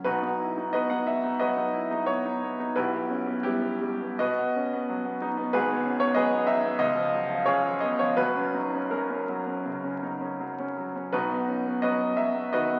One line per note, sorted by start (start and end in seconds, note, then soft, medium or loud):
0.04 1.35 B1 medium
0.04 1.36 B2 medium
0.04 0.21 D#4 medium
0.04 0.70 F#4 medium
0.04 0.73 B4 medium
0.23 0.50 D#4 medium
0.40 0.57 E4 soft
0.58 0.84 D#4 medium
0.73 1.00 B3 medium
0.73 0.89 F#4 medium
0.73 0.89 B4 medium
0.73 0.90 D#5 medium
0.90 1.17 D#4 soft
0.90 1.06 F#5 medium
1.07 1.33 B3 soft
1.07 1.39 E5 medium
1.24 1.50 D#4 soft
1.39 1.67 F#3 medium
1.39 2.04 F#4 medium
1.39 2.04 B4 medium
1.39 2.07 D#5 medium
1.57 1.84 D#4 medium
1.74 1.90 E4 soft
1.91 2.18 D#4 medium
2.06 2.35 B3 medium
2.06 2.75 C#5 medium
2.26 2.53 D#4 medium
2.43 2.70 B3 medium
2.60 2.76 D#4 medium
2.76 4.14 B1 medium
2.76 4.15 B2 medium
2.76 3.40 E4 medium
2.76 3.39 G4 medium
2.76 3.43 B4 medium
2.94 3.20 B3 medium
3.10 3.26 C#4 soft
3.27 3.43 B3 medium
3.43 3.73 G3 medium
3.43 3.60 B3 medium
3.43 4.15 E4 medium
3.43 4.18 G4 medium
3.62 3.92 B3 medium
3.81 4.11 G3 medium
4.01 4.19 B3 medium
4.19 5.49 B2 medium
4.19 5.17 F#4 medium
4.19 5.17 B4 medium
4.19 5.20 D#5 loud
4.39 4.65 B3 medium
4.56 4.72 C#4 medium
4.73 4.98 B3 medium
4.89 5.14 F#3 medium
5.05 5.30 B3 medium
5.22 5.47 D#4 medium
5.37 5.53 B3 medium
5.53 6.77 G#1 medium
5.53 6.78 G#2 medium
5.53 5.98 F#4 medium
5.53 5.98 G#4 medium
5.53 6.01 B4 loud
5.69 5.95 B3 medium
5.85 6.01 C#4 medium
6.00 6.26 B3 medium
6.00 6.16 C#5 loud
6.15 6.41 F#3 medium
6.15 6.46 G#4 medium
6.15 6.46 B4 medium
6.15 6.47 D#5 loud
6.32 6.58 B3 medium
6.47 6.74 D#4 medium
6.47 6.80 E5 loud
6.63 6.80 B3 medium
6.79 8.15 C#2 medium
6.79 7.48 D#5 loud
6.95 7.24 F3 medium
7.13 7.31 F#3 medium
7.30 7.59 F3 medium
7.45 7.76 C#3 medium
7.45 7.80 F4 medium
7.45 7.80 G#4 medium
7.45 7.82 C#5 loud
7.64 7.93 F3 medium
7.81 8.11 B3 medium
7.81 8.00 D#5 loud
7.99 8.19 F3 medium
7.99 8.19 C#5 loud
8.17 9.60 F#1 medium
8.17 9.60 F#2 medium
8.17 8.88 F#4 medium
8.17 8.91 B4 loud
8.36 8.66 C#4 medium
8.54 8.74 D#4 medium
8.74 8.90 C#4 medium
8.90 9.21 F#3 medium
8.90 9.09 C#4 medium
8.90 10.73 F#4 medium
8.90 10.76 A#4 medium
9.10 9.39 C#4 medium
9.29 9.58 F#3 medium
9.47 9.76 C#4 medium
9.66 9.95 C#3 medium
9.84 10.14 C#4 medium
10.03 10.21 D#4 soft
10.21 10.51 C#4 medium
10.40 10.70 F#3 medium
10.59 10.88 C#4 medium
10.77 11.06 F#3 soft
10.96 11.13 C#4 medium
11.12 12.47 B1 medium
11.12 12.48 B2 medium
11.12 11.79 D#4 medium
11.12 11.79 F#4 medium
11.12 11.82 B4 loud
11.31 11.59 B3 medium
11.48 11.66 C#4 soft
11.66 11.93 B3 medium
11.82 12.11 F#3 medium
11.82 12.15 F#4 medium
11.82 12.15 B4 medium
11.82 12.17 D#5 loud
12.01 12.28 B3 soft
12.17 12.45 F#3 medium
12.17 12.52 E5 medium
12.35 12.62 B3 medium
12.53 12.79 D#3 medium
12.53 12.79 F#4 medium
12.53 12.79 B4 medium
12.53 12.79 D#5 loud
12.70 12.79 B3 medium